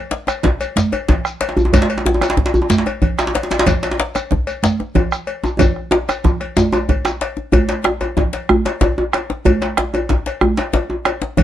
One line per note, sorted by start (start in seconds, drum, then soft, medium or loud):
0.11 djembe slap medium
0.11 high conga soft
0.27 bombo rim medium
0.27 cowbell medium
0.27 djembe slap soft
0.27 djembe tone medium
0.27 high conga soft
0.27 shekere soft
0.43 bombo low medium
0.43 djembe slap medium
0.43 djembe slap soft
0.43 high conga soft
0.43 low conga medium
0.43 djembe bass medium
0.60 cowbell soft
0.60 high conga soft
0.60 shekere soft
0.76 djembe slap medium
0.76 high conga medium
0.76 shekere medium
0.92 bombo rim soft
0.92 cowbell medium
0.92 djembe tone medium
1.08 bombo low loud
1.08 cowbell soft
1.08 djembe slap medium
1.08 low conga medium
1.08 djembe bass medium
1.25 bombo rim medium
1.25 shekere soft
1.41 cowbell medium
1.41 djembe slap medium
1.41 high conga soft
1.49 djembe slap medium
1.57 djembe slap soft
1.57 djembe tone medium
1.57 djembe bass medium
1.57 shekere soft
1.65 djembe tone medium
1.73 bombo low loud
1.73 cowbell medium
1.73 djembe slap medium
1.73 high conga medium
1.73 low conga medium
1.73 djembe bass medium
1.73 shekere medium
1.82 djembe slap medium
1.90 cowbell medium
1.98 djembe slap medium
2.06 djembe slap medium
2.06 djembe bass medium
2.14 djembe tone medium
2.21 bombo rim medium
2.21 cowbell medium
2.21 djembe slap soft
2.21 djembe slap medium
2.21 djembe tone medium
2.21 high conga soft
2.21 shekere soft
2.30 djembe slap medium
2.37 bombo low medium
2.37 djembe slap soft
2.37 high conga soft
2.37 djembe bass medium
2.37 low conga medium
2.46 djembe slap medium
2.54 high conga soft
2.54 djembe bass medium
2.54 shekere soft
2.62 djembe tone medium
2.70 djembe slap medium
2.70 high conga medium
2.70 shekere medium
2.78 djembe slap medium
2.86 bombo rim soft
2.86 cowbell medium
2.86 high conga soft
2.86 djembe tone medium
3.02 bombo low medium
3.02 cowbell soft
3.02 djembe bass medium
3.02 low conga medium
3.19 bombo rim medium
3.19 djembe slap loud
3.19 shekere soft
3.27 djembe slap medium
3.34 cowbell soft
3.34 djembe slap medium
3.34 high conga soft
3.43 djembe slap medium
3.51 djembe slap soft
3.51 djembe slap medium
3.51 djembe tone medium
3.51 shekere soft
3.59 djembe slap loud
3.66 bombo low loud
3.66 cowbell medium
3.66 djembe slap medium
3.66 high conga medium
3.66 low conga medium
3.66 djembe bass medium
3.66 shekere medium
3.83 cowbell medium
3.83 djembe slap medium
3.91 djembe slap medium
4.00 djembe slap medium
4.15 bombo rim medium
4.15 cowbell soft
4.15 djembe slap soft
4.15 high conga soft
4.15 djembe tone medium
4.15 shekere medium
4.31 bombo low loud
4.31 djembe slap soft
4.31 high conga soft
4.31 low conga medium
4.31 djembe bass medium
4.47 cowbell soft
4.47 high conga soft
4.47 shekere soft
4.63 djembe slap medium
4.63 high conga medium
4.63 shekere medium
4.79 bombo rim soft
4.79 high conga soft
4.79 djembe tone medium
4.95 bombo low medium
4.95 cowbell soft
4.95 djembe tone medium
4.95 low conga medium
4.95 djembe bass medium
5.12 bombo rim medium
5.12 shekere medium
5.27 cowbell soft
5.27 high conga soft
5.44 djembe slap soft
5.44 djembe tone medium
5.44 shekere soft
5.59 bombo low loud
5.59 cowbell medium
5.59 high conga medium
5.59 djembe tone loud
5.59 low conga medium
5.59 djembe bass medium
5.59 shekere medium
5.76 bombo rim soft
5.91 djembe slap medium
5.91 djembe tone loud
6.09 bombo rim medium
6.09 cowbell medium
6.09 djembe slap soft
6.09 djembe tone medium
6.09 shekere soft
6.24 bombo low loud
6.24 djembe tone loud
6.24 low conga medium
6.24 djembe bass medium
6.24 shekere soft
6.40 bombo rim soft
6.40 cowbell soft
6.40 high conga soft
6.57 djembe slap medium
6.57 djembe tone medium
6.57 high conga medium
6.57 shekere medium
6.72 cowbell soft
6.72 djembe tone loud
6.72 djembe tone medium
6.72 shekere soft
6.89 bombo low loud
6.89 cowbell soft
6.89 djembe bass medium
6.89 low conga medium
7.05 bombo rim medium
7.05 djembe slap medium
7.05 shekere soft
7.21 cowbell soft
7.21 djembe slap medium
7.37 djembe slap soft
7.37 djembe tone soft
7.52 bombo rim soft
7.52 bombo low loud
7.52 cowbell medium
7.52 high conga medium
7.52 djembe bass medium
7.52 low conga medium
7.69 cowbell soft
7.69 djembe slap medium
7.84 bombo rim loud
7.84 djembe slap medium
7.84 djembe tone medium
8.01 bombo rim soft
8.01 cowbell soft
8.01 djembe tone medium
8.17 bombo low loud
8.17 djembe slap medium
8.17 djembe bass medium
8.17 low conga medium
8.33 cowbell soft
8.33 djembe slap medium
8.49 bombo rim loud
8.49 djembe slap soft
8.49 high conga medium
8.49 djembe bass medium
8.65 cowbell medium
8.65 djembe slap soft
8.65 djembe slap medium
8.65 djembe tone medium
8.81 bombo low medium
8.81 cowbell soft
8.81 djembe slap medium
8.81 djembe tone medium
8.81 djembe bass medium
8.81 low conga medium
8.98 djembe tone medium
9.13 bombo rim medium
9.13 cowbell soft
9.13 djembe slap medium
9.30 bombo rim soft
9.30 djembe slap medium
9.30 djembe tone medium
9.45 bombo rim soft
9.45 bombo low loud
9.45 cowbell medium
9.45 high conga medium
9.45 low conga medium
9.45 djembe bass loud
9.45 djembe bass medium
9.62 cowbell soft
9.62 djembe slap medium
9.77 bombo rim medium
9.77 djembe slap medium
9.77 djembe tone medium
9.93 bombo rim soft
9.93 cowbell soft
9.93 djembe tone medium
10.09 bombo low medium
10.09 djembe slap medium
10.09 low conga medium
10.09 djembe bass medium
10.26 cowbell soft
10.26 djembe slap medium
10.41 bombo rim loud
10.41 djembe slap soft
10.41 high conga medium
10.41 djembe bass loud
10.57 cowbell soft
10.57 djembe slap medium
10.57 djembe slap soft
10.57 djembe tone medium
10.73 cowbell soft
10.73 djembe slap medium
10.73 djembe tone medium
10.73 djembe bass medium
10.90 djembe tone medium
11.05 bombo rim medium
11.05 cowbell soft
11.05 djembe slap medium
11.22 bombo rim soft
11.22 djembe slap medium
11.22 djembe tone medium
11.37 bombo rim soft
11.37 bombo low loud
11.37 cowbell medium
11.37 high conga medium
11.37 djembe bass medium
11.37 low conga medium